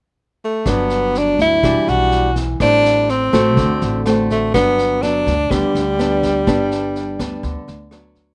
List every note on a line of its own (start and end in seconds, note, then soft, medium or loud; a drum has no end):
0.45 0.71 A3 medium
0.66 1.35 G1 medium
0.66 1.61 G2 medium
0.66 1.59 F#3 medium
0.66 1.59 B3 medium
0.66 1.59 D4 medium
0.66 kick medium
0.66 cross-stick medium
0.66 snare soft
0.70 1.20 B3 loud
0.90 snare soft
1.15 1.40 D4 medium
1.15 snare soft
1.39 1.65 D2 medium
1.39 1.91 E4 loud
1.39 kick soft
1.39 snare soft
1.63 1.74 E1 medium
1.63 2.58 E3 medium
1.63 2.29 G3 medium
1.63 2.29 D4 soft
1.63 2.29 F#4 medium
1.63 kick medium
1.63 cross-stick medium
1.63 snare soft
1.87 2.56 B1 medium
1.87 2.37 F#4 loud
1.87 snare soft
2.12 snare soft
2.36 kick soft
2.36 snare soft
2.60 3.29 A1 medium
2.60 3.55 A2 medium
2.60 3.08 G3 medium
2.60 3.09 C4 medium
2.60 3.12 D4 loud
2.60 3.09 E4 medium
2.60 kick medium
2.60 cross-stick medium
2.60 snare soft
2.85 snare soft
3.09 4.06 C4 medium
3.09 snare soft
3.33 3.57 A1 medium
3.33 4.02 A3 medium
3.33 4.02 C4 medium
3.33 4.02 F#4 medium
3.33 kick soft
3.33 cross-stick medium
3.33 snare soft
3.57 3.68 D2 medium
3.57 4.51 D3 medium
3.57 kick medium
3.57 snare soft
3.81 4.50 A1 medium
3.81 snare soft
4.06 4.50 A3 medium
4.06 4.50 C4 medium
4.06 4.51 F#4 medium
4.06 cross-stick medium
4.06 snare soft
4.30 4.53 A3 medium
4.30 kick soft
4.30 snare soft
4.54 5.23 G1 medium
4.54 5.48 G2 soft
4.54 4.98 F#3 medium
4.54 5.04 B3 loud
4.54 4.99 B3 medium
4.54 4.99 D4 medium
4.54 kick medium
4.54 cross-stick medium
4.54 snare soft
4.78 snare soft
5.03 5.34 F#3 medium
5.03 5.34 B3 medium
5.03 5.52 D4 loud
5.03 5.34 D4 medium
5.03 snare soft
5.27 5.49 D2 medium
5.27 kick soft
5.27 snare soft
5.51 5.62 D2 medium
5.51 6.45 D3 medium
5.51 7.92 G3 medium
5.51 5.82 B3 medium
5.51 5.82 D4 medium
5.51 kick medium
5.51 cross-stick medium
5.51 snare soft
5.75 6.43 D2 medium
5.75 snare soft
5.99 6.30 B3 medium
5.99 6.30 D4 medium
5.99 snare soft
6.23 kick soft
6.23 snare soft
6.47 7.16 G1 medium
6.47 7.41 G2 medium
6.47 7.16 B3 medium
6.47 7.16 D4 medium
6.47 kick medium
6.47 cross-stick medium
6.47 snare soft
6.71 snare soft
6.96 snare soft
7.19 7.42 D2 medium
7.19 7.88 B3 medium
7.19 7.88 D4 medium
7.19 kick soft
7.19 cross-stick medium
7.19 snare soft
7.43 7.55 D2 medium
7.43 8.34 D3 medium
7.43 kick medium
7.43 snare soft
7.68 8.34 D2 medium
7.68 snare soft
7.91 8.34 F#3 medium
7.91 8.34 B3 medium
7.91 8.34 D4 medium
7.91 cross-stick medium
7.91 snare soft
8.15 kick soft
8.15 snare soft